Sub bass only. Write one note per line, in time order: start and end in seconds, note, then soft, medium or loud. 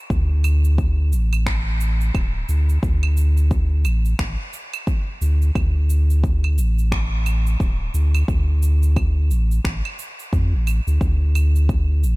0.10 1.14 D2 loud
1.12 2.11 A1 medium
2.14 2.44 D1 medium
2.49 2.78 D2 medium
2.83 3.86 D2 medium
3.85 4.14 A1 loud
4.19 4.36 A1 medium
5.21 5.51 D2 medium
5.55 6.59 D2 medium
6.58 7.56 A1 loud
7.60 7.90 D1 medium
7.94 8.24 D2 medium
8.28 9.32 D2 medium
9.30 9.60 A1 loud
9.64 9.81 A1 medium
10.33 10.54 F2 medium
10.53 10.80 A1 loud
10.87 10.99 D2 medium
11.01 12.05 D2 medium
12.03 12.16 A1 loud